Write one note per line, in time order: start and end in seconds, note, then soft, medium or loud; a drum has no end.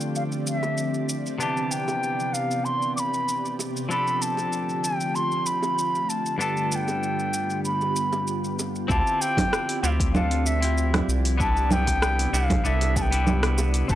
0.00 1.35 D3 medium
0.00 1.37 F3 medium
0.00 1.36 A3 medium
0.00 1.36 C4 medium
0.00 1.37 C4 medium
0.00 1.36 D4 medium
0.00 1.37 F4 medium
0.00 1.37 G4 medium
0.00 3.86 D5 medium
0.00 shaker soft
0.15 0.23 F5 medium
0.15 shaker soft
0.32 shaker soft
0.47 1.05 E5 medium
0.47 shaker medium
0.63 high bongo medium
0.63 shaker soft
0.78 shaker soft
0.94 shaker soft
1.09 shaker medium
1.26 shaker soft
1.38 3.86 C3 medium
1.38 3.87 C3 medium
1.38 3.87 E3 medium
1.38 3.87 B3 medium
1.38 3.86 B3 medium
1.38 3.87 D4 medium
1.38 6.35 G4 medium
1.38 1.73 A5 medium
1.38 shaker soft
1.43 3.88 G4 medium
1.57 shaker soft
1.71 2.35 G5 medium
1.71 shaker medium
1.88 high bongo soft
1.88 shaker soft
2.03 shaker soft
2.20 shaker soft
2.33 2.66 F5 medium
2.33 shaker medium
2.51 shaker soft
2.65 2.95 C6 loud
2.65 shaker soft
2.82 shaker soft
2.96 3.54 B5 medium
2.96 3.00 D6 medium
2.96 shaker medium
3.14 shaker soft
3.28 shaker soft
3.45 shaker soft
3.59 high bongo medium
3.59 shaker medium
3.77 shaker soft
3.89 8.86 D3 medium
3.89 6.36 F3 medium
3.89 6.37 A3 medium
3.89 6.36 C4 medium
3.89 6.37 D4 medium
3.89 8.86 F4 medium
3.89 6.37 G4 medium
3.89 4.23 B5 loud
3.89 shaker soft
3.93 6.38 A4 medium
4.07 shaker soft
4.22 4.85 A5 loud
4.22 shaker medium
4.37 high bongo soft
4.37 shaker soft
4.53 shaker soft
4.69 shaker soft
4.84 5.17 G5 medium
4.84 shaker medium
5.01 shaker soft
5.15 5.48 C6 loud
5.15 shaker soft
5.32 shaker soft
5.46 6.11 B5 medium
5.46 shaker medium
5.63 high bongo medium
5.63 shaker soft
5.78 shaker soft
5.95 shaker soft
6.09 6.39 A5 medium
6.09 shaker medium
6.26 shaker soft
6.38 8.85 G2 medium
6.38 8.86 B3 medium
6.38 8.87 B3 medium
6.38 8.86 D4 medium
6.38 8.87 G4 medium
6.38 6.72 A5 loud
6.38 shaker soft
6.42 8.87 A4 medium
6.57 shaker soft
6.72 7.64 G5 medium
6.72 6.76 A5 medium
6.72 shaker medium
6.88 high bongo soft
6.88 shaker soft
7.03 shaker soft
7.19 shaker soft
7.34 shaker medium
7.50 shaker soft
7.65 8.55 B5 medium
7.65 shaker soft
7.81 high bongo soft
7.81 shaker soft
7.96 shaker medium
8.13 high bongo medium
8.13 shaker soft
8.27 shaker soft
8.44 shaker soft
8.59 high bongo medium
8.59 shaker medium
8.76 shaker soft
8.88 9.02 D2 loud
8.88 11.37 F3 medium
8.88 9.79 C4 medium
8.88 11.38 C4 medium
8.88 9.80 E4 medium
8.88 9.80 F4 medium
8.88 13.95 G4 medium
8.88 9.81 G4 loud
8.88 13.86 D5 medium
8.88 9.22 A5 loud
8.88 kick loud
8.88 shaker soft
9.07 shaker soft
9.21 9.81 G5 loud
9.21 shaker medium
9.37 kick medium
9.37 open hi-hat medium
9.37 high bongo medium
9.37 low conga medium
9.37 shaker soft
9.53 cross-stick medium
9.53 shaker soft
9.69 open hi-hat soft
9.69 shaker soft
9.82 11.03 D2 medium
9.82 10.11 C4 medium
9.82 10.11 E4 medium
9.82 10.12 F4 medium
9.82 10.12 G4 medium
9.82 9.89 F5 medium
9.82 shaker medium
10.00 kick loud
10.00 open hi-hat medium
10.00 shaker soft
10.13 10.59 C4 medium
10.13 10.59 D4 medium
10.13 10.60 F4 medium
10.13 10.60 A4 medium
10.13 10.48 F5 loud
10.13 low conga medium
10.13 shaker soft
10.31 open hi-hat soft
10.31 shaker soft
10.46 11.09 E5 medium
10.46 shaker medium
10.61 11.35 C4 medium
10.61 11.36 E4 medium
10.61 11.37 F4 medium
10.61 open hi-hat medium
10.61 shaker soft
10.65 11.37 G4 medium
10.78 shaker soft
10.94 cross-stick medium
10.94 open hi-hat soft
10.94 low conga medium
10.94 shaker soft
11.08 12.28 C2 medium
11.08 shaker medium
11.25 open hi-hat medium
11.25 shaker soft
11.38 13.87 C3 medium
11.38 12.29 B3 medium
11.38 13.88 B3 medium
11.38 12.30 D4 medium
11.38 12.30 E4 medium
11.38 12.31 G4 loud
11.38 11.73 A5 loud
11.38 kick loud
11.38 shaker soft
11.57 shaker soft
11.71 12.36 G5 loud
11.71 low conga medium
11.71 shaker medium
11.87 kick medium
11.87 open hi-hat medium
11.87 high bongo soft
11.87 shaker soft
12.02 cross-stick medium
12.02 shaker soft
12.19 open hi-hat soft
12.19 shaker soft
12.33 12.57 C2 medium
12.33 12.61 B3 medium
12.33 12.61 D4 medium
12.33 12.62 E4 medium
12.33 12.62 G4 medium
12.33 12.68 F5 loud
12.33 shaker medium
12.50 kick loud
12.50 open hi-hat soft
12.50 low conga medium
12.50 shaker soft
12.64 13.84 C2 loud
12.64 13.09 B3 loud
12.64 13.09 D4 medium
12.64 13.10 E4 medium
12.64 13.10 A4 loud
12.64 12.98 E5 medium
12.64 shaker soft
12.81 open hi-hat soft
12.81 high bongo soft
12.81 shaker soft
12.96 13.03 A5 medium
12.96 kick loud
12.96 shaker medium
13.02 13.59 G5 loud
13.11 13.86 B3 medium
13.11 13.86 D4 medium
13.11 13.87 E4 medium
13.11 open hi-hat medium
13.11 shaker soft
13.15 13.88 G4 medium
13.27 low conga medium
13.27 shaker soft
13.43 cross-stick medium
13.43 open hi-hat soft
13.43 shaker soft
13.58 high bongo medium
13.58 shaker medium
13.74 open hi-hat medium
13.74 shaker soft
13.88 13.95 F1 loud
13.88 13.95 D3 medium
13.88 13.95 A3 medium
13.88 13.95 C4 medium
13.88 13.95 D4 medium
13.88 13.95 F4 medium
13.88 13.95 G4 medium
13.88 13.95 A4 loud
13.88 13.95 A5 loud
13.88 kick loud
13.88 shaker soft